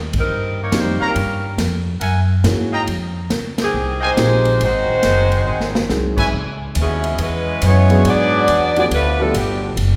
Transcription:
Already playing: upright bass D#2
0.13 kick, ride
0.18 saxophone section G3 C4 D#4 A#4
0.29 upright bass G2
0.62 saxophone section A#3 D#4 G4 C#5
0.72 upright bass F2, upright piano D#3 G3 A#3 C4 G4, snare, hi-hat pedal, ride
0.78 saxophone section A#3 D#4 G4 C5
1.00 trumpet section A#4 C#5 F5 A#5, muted upright bass stroke
1.06 saxophone section G3 C#4 F4 A#4
1.15 upright bass G2, ride
1.58 upright bass F2, snare, hi-hat pedal, ride
2.00 upright bass F#2, trumpet section A#4 E5 F#5 G#5, ride
2.43 upright bass G#2, upright piano E3 G#3 A#3 C#4 F#4, snare, hi-hat pedal, ride
2.71 trumpet section D#5 F5 G5 A#5
2.87 upright bass F2, ride
3.30 upright bass C#2, snare, hi-hat pedal, ride
3.58 saxophone section D#3 C4 G4 G#4, snare, ride
3.74 upright bass C2
4.01 saxophone section G#3 D#4 C5, trumpet section D#5 F5 G5 G#5
4.05 saxophone section G4
4.17 upright bass A#1, upright piano F3 G#3 C4 D#4 G4, snare, hi-hat pedal, ride
4.45 ride
4.59 upright bass G#1, trombone section D#3 F#3 C4, saxophone section D#4 C5, ride
4.64 saxophone section G#3 F#4
4.89 muted upright bass stroke
5.03 upright bass F#1, snare, hi-hat pedal, ride
5.32 ride
5.46 upright bass G#1, trumpet section C5 D#5 F#5 G#5
5.60 snare
5.75 snare
5.89 upright bass C2, upright piano F#3 G#3 C4 D#4 G#4, snare, hi-hat pedal
6.17 trumpet section B4 C#5 E5 G#5, kick, crash
6.33 upright bass C#2
6.75 upright bass D#2, hi-hat pedal, ride
6.79 trombone section B2 G#3 E4, saxophone section B3 C#4 E4 G#4
7.04 ride
7.18 upright bass E2, trombone section E3 G#3 B3, ride
7.23 saxophone section G#3 C#4 E4 B4
7.62 upright bass F#2, trombone section E3 G#3 C#4, saxophone section B3 E4 G#4 C#5, hi-hat pedal, ride
7.90 upright piano F#3 G#3 B3 D4 G#4, ride
8.05 trombone section F#3 B3 D4, saxophone section B3 F#4 G#4 D5, ride
8.48 upright bass E2, hi-hat pedal, ride
8.76 upright piano F3 A3 B3 D4 G4, trombone section F#3 B3 D4, saxophone section B3 F#4 G#4 D5, ride
8.91 upright bass D2, trombone section D3 F3 B3, saxophone section A3 D4 F4 B4, ride
9.20 trombone section D3 F3 A3, upright piano F3 A3 B3 D4 G4, saxophone section F3 B3 D4 A4
9.34 upright bass G1, trombone section B2 D3 G3, saxophone section F3 B3 D4 G4, hi-hat pedal, ride
9.76 upright bass F#1, ride

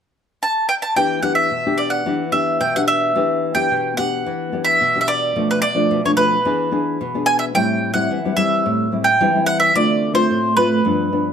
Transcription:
0.43 mandolin A5
0.69 mandolin G5
0.82 mandolin A5
0.96 nylon-string guitar E3 B3 D4 G4, mandolin G5
1.22 nylon-string guitar B3 D4 G4, mandolin F#5
1.35 mandolin E5
1.51 nylon-string guitar B2
1.66 nylon-string guitar B3 D4 G4
1.78 mandolin D5
1.90 mandolin F#5
2.06 nylon-string guitar E3 B3 D4 G4
2.32 nylon-string guitar B3 D4 G4, mandolin E5
2.60 nylon-string guitar B2, mandolin G5
2.75 nylon-string guitar B3 D4 G4, mandolin F#5
2.88 mandolin E5
3.15 nylon-string guitar E3 B3 D4 G4
3.55 nylon-string guitar B3 D4 G4, mandolin G5
3.71 nylon-string guitar B2
3.97 nylon-string guitar B3 D4 G4, mandolin F#5
4.26 nylon-string guitar E3
4.52 nylon-string guitar B3 D4 G4
4.64 mandolin E5
4.81 nylon-string guitar B2
4.96 nylon-string guitar B3 D4 G4
5.01 mandolin E5
5.08 mandolin D5
5.36 nylon-string guitar B2 F3 A3 D4
5.51 mandolin B4
5.62 mandolin D5
5.75 nylon-string guitar F3 A3 D4
5.91 nylon-string guitar B2
6.05 nylon-string guitar F3 A3 D4, mandolin C#5
6.17 nylon-string guitar F3 A3 D4, mandolin B4
6.45 nylon-string guitar E3 B3 D4 G#4
6.71 nylon-string guitar B3 D4 G#4
7.01 nylon-string guitar B2
7.14 nylon-string guitar B3 D4 G#4
7.26 mandolin G#5
7.39 mandolin E5
7.55 nylon-string guitar A2 G3 C4 E4, mandolin G5
7.94 nylon-string guitar G3 C4 E4, mandolin F#5
8.11 nylon-string guitar E3
8.25 nylon-string guitar G3 C4 E4
8.37 nylon-string guitar G3 C4 E4, mandolin E5
8.66 nylon-string guitar A2
8.92 nylon-string guitar G3 C4 E4
9.04 mandolin G5
9.21 nylon-string guitar E3 G3 C4 E4
9.35 nylon-string guitar G3 C4 E4
9.46 mandolin F#5
9.60 mandolin E5
9.75 nylon-string guitar D3 A3 C4 F4, mandolin D5
10.14 nylon-string guitar A3 C4 F4, mandolin C5
10.30 nylon-string guitar A2
10.57 nylon-string guitar A3 C4 F4, mandolin B4
10.85 nylon-string guitar G2 F3 B3 D4
11.12 nylon-string guitar F3 B3 D4

